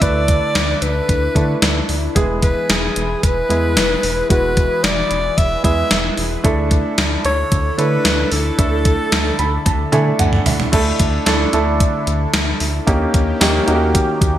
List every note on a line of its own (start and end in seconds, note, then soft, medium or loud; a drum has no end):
0.00 0.40 D2 loud
0.00 2.12 D3 medium
0.00 1.35 A3 medium
0.00 1.35 D4 medium
0.00 2.12 D4 medium
0.00 0.02 E4 medium
0.00 6.41 E4 medium
0.00 0.73 E4 medium
0.00 1.36 A4 medium
0.00 2.12 A4 medium
0.00 0.73 B4 medium
0.00 0.84 D5 loud
0.00 kick loud
0.00 closed hi-hat medium
0.28 kick medium
0.28 closed hi-hat medium
0.55 0.74 D2 medium
0.55 snare loud
0.55 closed hi-hat medium
0.82 1.01 D2 medium
0.82 1.89 B4 medium
0.82 closed hi-hat medium
1.09 1.28 D2 loud
1.09 kick medium
1.09 closed hi-hat medium
1.35 1.55 D3 loud
1.35 1.89 A3 medium
1.35 1.89 D4 medium
1.35 1.89 E4 medium
1.35 1.89 A4 medium
1.35 kick medium
1.35 closed hi-hat medium
1.62 1.82 D2 loud
1.62 snare loud
1.62 closed hi-hat medium
1.89 2.08 D2 medium
1.89 open hi-hat medium
2.15 2.54 E1 loud
2.15 6.41 E3 medium
2.15 2.87 G#3 medium
2.15 2.87 B3 medium
2.15 2.87 E4 medium
2.15 6.41 G#4 medium
2.15 2.87 G#4 medium
2.15 6.41 B4 medium
2.15 kick loud
2.15 closed hi-hat medium
2.42 2.71 B4 medium
2.42 kick medium
2.42 closed hi-hat medium
2.69 2.89 E1 loud
2.69 3.25 G#4 medium
2.69 snare loud
2.69 closed hi-hat medium
2.96 3.16 E1 loud
2.96 closed hi-hat medium
3.23 3.43 E1 loud
3.23 4.30 B4 loud
3.23 kick medium
3.23 closed hi-hat medium
3.49 3.78 E2 loud
3.49 4.03 G#3 medium
3.49 4.03 B3 medium
3.49 4.03 E4 medium
3.49 4.04 G#4 medium
3.49 closed hi-hat medium
3.77 3.96 E1 loud
3.77 snare loud
3.77 closed hi-hat medium
4.03 4.23 E1 medium
4.03 open hi-hat medium
4.29 4.69 E1 loud
4.29 5.01 G#3 medium
4.29 5.01 B3 medium
4.29 5.02 E4 medium
4.29 5.02 F#4 medium
4.29 4.85 B4 loud
4.29 kick loud
4.29 closed hi-hat medium
4.57 kick medium
4.57 closed hi-hat medium
4.84 5.03 E1 loud
4.84 5.39 D5 loud
4.84 snare loud
4.84 closed hi-hat medium
5.11 5.30 E1 loud
5.11 closed hi-hat medium
5.38 5.57 E1 loud
5.38 5.64 E5 loud
5.38 kick medium
5.38 closed hi-hat medium
5.63 5.84 E2 medium
5.63 6.17 G#3 medium
5.63 6.17 B3 medium
5.63 6.18 E4 medium
5.63 6.18 G#4 medium
5.63 6.14 E5 loud
5.63 kick medium
5.63 closed hi-hat medium
5.91 6.10 E1 loud
5.91 snare loud
5.91 closed hi-hat medium
6.17 6.37 E1 medium
6.17 open hi-hat medium
6.44 6.83 D2 loud
6.44 10.69 D3 medium
6.44 7.15 A3 medium
6.44 7.16 D4 medium
6.44 10.69 D4 medium
6.44 10.69 E4 medium
6.44 7.16 E4 medium
6.44 10.69 A4 medium
6.44 7.16 A4 medium
6.44 kick loud
6.44 closed hi-hat medium
6.71 kick medium
6.71 closed hi-hat medium
6.98 7.17 D2 loud
6.98 snare medium
6.98 closed hi-hat medium
7.25 7.44 D2 medium
7.25 7.80 C#5 loud
7.25 closed hi-hat medium
7.52 7.71 D2 loud
7.52 kick medium
7.52 closed hi-hat medium
7.78 7.98 D3 medium
7.78 8.32 A3 medium
7.78 8.32 D4 medium
7.78 8.32 E4 medium
7.78 8.32 A4 medium
7.78 8.34 B4 loud
7.78 closed hi-hat medium
8.05 8.24 D2 loud
8.05 snare loud
8.05 closed hi-hat medium
8.32 8.51 D2 loud
8.32 10.20 A4 loud
8.32 open hi-hat medium
8.58 8.97 D2 loud
8.58 9.30 A3 medium
8.58 9.30 D4 medium
8.58 9.30 E4 medium
8.58 9.30 A4 medium
8.58 kick loud
8.58 closed hi-hat medium
8.85 kick loud
8.85 closed hi-hat medium
9.12 9.32 D2 loud
9.12 snare medium
9.12 closed hi-hat medium
9.39 9.58 D2 loud
9.39 9.64 B5 medium
9.39 closed hi-hat medium
9.66 9.85 D2 loud
9.66 9.91 A5 medium
9.66 kick loud
9.66 closed hi-hat medium
9.66 high tom medium
9.92 10.12 D3 loud
9.92 10.46 A3 medium
9.92 10.46 D4 medium
9.92 10.46 E4 medium
9.92 10.46 A4 loud
9.92 10.18 G#5 medium
9.92 closed hi-hat medium
9.92 mid tom medium
10.19 10.39 D2 loud
10.19 10.44 F#5 medium
10.19 closed hi-hat medium
10.19 mid tom medium
10.33 mid tom medium
10.46 10.65 D2 medium
10.46 10.71 E5 medium
10.46 floor tom medium
10.46 open hi-hat medium
10.60 floor tom medium
10.72 10.92 D2 loud
10.72 12.85 D3 medium
10.72 11.08 A3 medium
10.72 11.08 D4 medium
10.72 12.85 D4 medium
10.72 12.85 E4 medium
10.72 11.09 E4 medium
10.72 12.85 A4 medium
10.72 11.09 A4 medium
10.72 kick loud
10.72 closed hi-hat medium
10.72 crash loud
10.99 11.19 D2 loud
10.99 kick medium
10.99 closed hi-hat medium
11.26 11.46 D2 loud
11.26 11.44 A3 medium
11.26 11.44 D4 medium
11.26 11.45 E4 medium
11.26 11.45 A4 loud
11.26 snare loud
11.26 closed hi-hat medium
11.53 11.82 D2 medium
11.53 12.24 A3 medium
11.53 12.25 D4 medium
11.53 12.25 E4 medium
11.53 12.25 A4 loud
11.53 closed hi-hat medium
11.80 kick loud
11.80 closed hi-hat medium
12.07 12.26 D2 loud
12.07 closed hi-hat medium
12.34 12.53 D2 loud
12.34 snare loud
12.34 closed hi-hat medium
12.60 12.80 D2 loud
12.60 open hi-hat medium
12.87 13.07 D#2 loud
12.87 14.38 D#3 medium
12.87 13.23 A#3 medium
12.87 14.38 A#3 medium
12.87 13.23 C#4 medium
12.87 14.38 C#4 medium
12.87 13.23 D#4 medium
12.87 14.38 G4 loud
12.87 13.23 G4 medium
12.87 kick loud
12.87 closed hi-hat medium
13.14 13.34 D#2 loud
13.14 kick medium
13.14 closed hi-hat medium
13.40 13.60 D#2 loud
13.40 13.58 A#3 medium
13.40 13.59 C#4 medium
13.40 13.59 D#4 medium
13.40 13.59 G4 loud
13.40 snare loud
13.40 closed hi-hat medium
13.40 tambourine medium
13.67 13.97 D#2 loud
13.67 14.38 A#3 medium
13.67 14.38 C#4 medium
13.67 14.38 D#4 medium
13.67 13.75 F#4 medium
13.67 closed hi-hat medium
13.75 14.38 G4 medium
13.95 kick loud
13.95 closed hi-hat medium
14.21 14.38 D#2 loud
14.21 kick medium
14.21 closed hi-hat medium